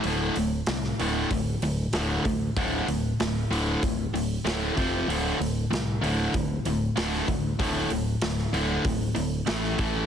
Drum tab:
HH |o-o-o-o-o-o-o-o-|o-o-o-o-o-o-o-o-|o-o-o-o-o-o-o-o-|o-o-o-o-o-o-o-o-|
SD |----oo------o---|----o-------o---|----o-------oo--|----oo------oo--|
BD |--------o-----o-|o-------o-----o-|--------o-----o-|o-------o-----o-|